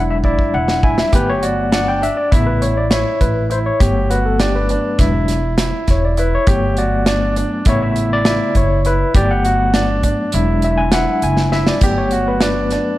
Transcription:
Already playing: E1 F#3 G#3 D4 E4
0.10 E5
0.24 E4 D5, kick
0.39 kick
0.54 E1 F#5
0.68 snare
0.83 E4 G#5, kick
0.98 E5, snare
1.12 G1 F#3 A3 B3 G4 B4, kick, closed hi-hat
1.29 C#5
1.42 F#4 D5, closed hi-hat
1.72 D4 F#5, snare, closed hi-hat
1.88 G5
2.02 D4 E5, closed hi-hat
2.17 D5
2.32 A1 C#3 A3 B3 E4 E5, kick, closed hi-hat
2.47 B4
2.62 C#5, closed hi-hat
2.77 D5
2.90 E4 C#5, snare, closed hi-hat
3.21 A1 B4, kick, closed hi-hat
3.50 E4 C5, closed hi-hat
3.66 C#5
3.80 G1 F#3 A3 B3 G4, kick, closed hi-hat
4.10 F#4 B4, closed hi-hat
4.25 A4
4.40 D4 G4, snare, closed hi-hat
4.55 B4
4.69 D4, closed hi-hat
4.99 E1 F#3 G#3 D4 E4, kick, snare, closed hi-hat
5.28 snare, closed hi-hat
5.58 E4, snare, closed hi-hat
5.88 E1 C#5, kick, snare, closed hi-hat
6.05 D5
6.17 E4 B4, closed hi-hat
6.35 C#5
6.47 G1 F#3 A3 B3 G4, kick, closed hi-hat
6.77 F#4 D5, closed hi-hat
7.06 D4, snare, closed hi-hat
7.36 D4, closed hi-hat
7.65 A1 C#3 A3 B3 E4 C#5, kick, closed hi-hat
7.82 E5
7.96 closed hi-hat
8.13 D5
8.25 E4, snare, closed hi-hat
8.55 F#1 C#5, kick, closed hi-hat
8.85 E4 B4, closed hi-hat
9.14 G1 F#3 A3 B3 G4 D5, kick, closed hi-hat
9.31 F#5
9.45 F#4, closed hi-hat
9.74 D4, snare, closed hi-hat
10.03 D4, kick, closed hi-hat
10.32 E1 F#3 G#3 D4 E4, closed hi-hat
10.62 E5, closed hi-hat
10.78 G#5
10.92 E4 F#5, snare, closed hi-hat
11.22 F#1 G#5, closed hi-hat
11.37 snare
11.52 E4 E5, snare
11.67 D5, snare
11.81 G1 F#3 A3 B3 G4, kick, closed hi-hat, splash
11.98 C#5
12.11 F#4, closed hi-hat
12.28 B4
12.41 D4, snare, closed hi-hat
12.70 D4, snare, closed hi-hat

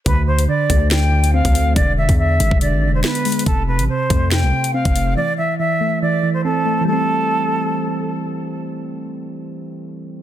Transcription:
0.06 D2 D3 B4, kick, closed hi-hat
0.27 D3 C5
0.39 closed hi-hat
0.48 D3 D5
0.70 D2 A3, kick, closed hi-hat
0.91 D3 G5, snare, clap
1.12 D3
1.24 closed hi-hat
1.34 C4 F5
1.45 D2, kick, closed hi-hat
1.54 A3, closed hi-hat
1.76 E1 D3 D5, kick, closed hi-hat
1.98 D3 E5
2.09 E2, kick, closed hi-hat
2.19 D3 E5
2.40 G#1 G#3, closed hi-hat
2.51 E1, kick
2.61 D3 D5, closed hi-hat
2.73 G#1
2.82 D3
2.88 E1
2.95 C5
3.03 B3 B4, snare, clap
3.15 closed hi-hat
3.25 G#3, closed hi-hat, open hi-hat
3.32 closed hi-hat
3.39 closed hi-hat
3.46 F1 C3 A4, kick, closed hi-hat
3.68 C3 B4
3.79 A1, closed hi-hat
3.89 C3 C5
4.10 F2 A3, kick, closed hi-hat
4.31 C3 G5, snare, clap
4.43 C2
4.53 C3
4.64 closed hi-hat
4.74 C4 F5
4.85 F1, kick, closed hi-hat
4.96 A3, closed hi-hat
5.16 E3 D5
5.38 E3 E5
5.59 E3 E5
5.81 A3
6.02 E3 D5
6.23 E3
6.34 C5
6.44 C4 A4
6.66 A3
6.81 E3
6.85 G3 A3 A4
6.93 C4

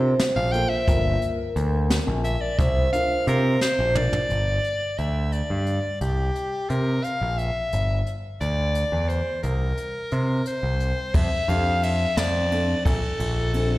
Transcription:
Already playing: C3 C5
0.20 snare, closed hi-hat
0.36 A#1 F5
0.52 A#3 F4 A4 G5, closed hi-hat
0.69 E5
0.87 G1 A#3 F4 A#4, kick, closed hi-hat
1.22 closed hi-hat
1.56 D2, closed hi-hat
1.90 snare, closed hi-hat
2.07 A#1
2.24 E5, closed hi-hat
2.41 D5
2.58 C2 C5 E5, kick, closed hi-hat
2.92 D4 F4 A#4 F5, closed hi-hat
3.27 C3 A#4, closed hi-hat
3.61 C5, snare
3.79 A#1
3.95 D4 F4 A#4 D5, mid tom
4.13 floor tom
4.30 G1, closed hi-hat
4.64 closed hi-hat
4.98 D2 E5, closed hi-hat
5.32 D5, closed hi-hat
5.50 G2
5.67 closed hi-hat
6.01 C2 G4, closed hi-hat
6.36 closed hi-hat
6.70 C3 A#4, closed hi-hat
7.04 F5, closed hi-hat
7.21 A#1
7.38 E5, closed hi-hat
7.73 G1, closed hi-hat
8.07 closed hi-hat
8.41 D2 D5, closed hi-hat
8.75 closed hi-hat
8.92 E2
9.09 C5, closed hi-hat
9.43 C2 A#4, closed hi-hat
9.77 closed hi-hat
10.11 C3, closed hi-hat
10.46 C5, closed hi-hat
10.63 C2
10.80 closed hi-hat
11.14 F2 E5, kick, ride
11.48 F2 D4 G4 A4 F5, ride
11.83 E5, ride
12.17 F2 D5, snare, ride
12.51 C4 D4 A4, ride
12.85 A#1 A4, kick, ride
13.20 A#1, ride
13.53 C4 D4 A4, ride

